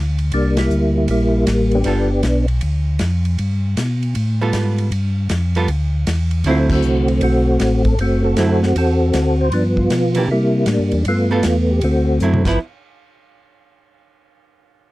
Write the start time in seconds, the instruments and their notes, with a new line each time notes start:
Already playing: tonewheel organ D2
0.18 ride
0.32 tonewheel organ C2 G3 A#3 D4, ride
0.57 tonewheel organ G3 A#3 E4, snare, ride
0.70 tonewheel organ D2, hi-hat pedal
0.97 tonewheel organ E4
1.08 tonewheel organ A#1 G3 A#3 E4, ride
1.46 tonewheel organ A1, snare, hi-hat pedal, ride
1.71 tonewheel organ B3 D4 G4, ride
1.84 tonewheel organ G1, hollow-body jazz guitar G3 B3 F4 A4, ride
2.23 tonewheel organ B1, snare, hi-hat pedal, ride
2.48 ride
2.61 tonewheel organ D2, ride
2.99 tonewheel organ F2, snare, hi-hat pedal, ride
3.25 ride
3.38 tonewheel organ G2, ride
3.77 tonewheel organ B2, snare, hi-hat pedal, ride
4.03 ride
4.15 tonewheel organ A2, ride
4.41 hollow-body jazz guitar G3 B3 F4 A4
4.53 tonewheel organ G#2, snare, hi-hat pedal, ride
4.78 ride
4.91 tonewheel organ G2, ride
5.29 tonewheel organ F2, snare, hi-hat pedal, ride
5.55 hollow-body jazz guitar G3 B3 F4 A4, ride
5.68 tonewheel organ D2, ride
6.07 tonewheel organ E2, snare, hi-hat pedal, ride
6.31 ride
6.44 tonewheel organ D2, hollow-body jazz guitar D3 F#3 C4 E4, ride
6.49 tonewheel organ A3 C4 F4
6.70 tonewheel organ A3 C4, kick, crash
6.75 tonewheel organ F#4
6.82 tonewheel organ C2, hi-hat pedal
7.08 ride
7.21 tonewheel organ B1 A3 C4 F#4, ride
7.60 tonewheel organ A1, snare, hi-hat pedal, ride
7.85 tonewheel organ A4, kick, ride
7.98 tonewheel organ F#1 A3 C4 F#4, ride
8.23 tonewheel organ C4 F#4 A4
8.37 tonewheel organ F#2, hollow-body jazz guitar D3 F#3 C4 E4, snare, hi-hat pedal, ride
8.63 snare
8.75 tonewheel organ E2 C4 F#4 A4, ride
9.13 tonewheel organ D2, snare, hi-hat pedal, ride
9.41 tonewheel organ C5
9.52 tonewheel organ G2 F3 B3 D4, ride
9.77 tonewheel organ F4, kick
9.90 tonewheel organ B2 F4, snare, hi-hat pedal, ride
10.15 hollow-body jazz guitar E3 A#3 D4, tonewheel organ G4, ride
10.28 tonewheel organ C3 A#3 E4
10.32 tonewheel organ G3
10.66 tonewheel organ A2 D4, snare, hi-hat pedal, ride
10.79 tonewheel organ G2
10.92 tonewheel organ E2 D4, ride
11.05 tonewheel organ G2 A3 B3 F4, ride
11.31 hollow-body jazz guitar G3 B3 F4 A4
11.43 tonewheel organ E2 F4, snare, hi-hat pedal, ride
11.71 tonewheel organ G4
11.81 tonewheel organ D2 A3 C4 F#4, ride
12.20 tonewheel organ F#2, hollow-body jazz guitar D3 F#3 C4 E4, hi-hat pedal
12.34 mid tom
12.45 tonewheel organ G1 B4, hollow-body jazz guitar F3 B3 E4, kick, snare, crash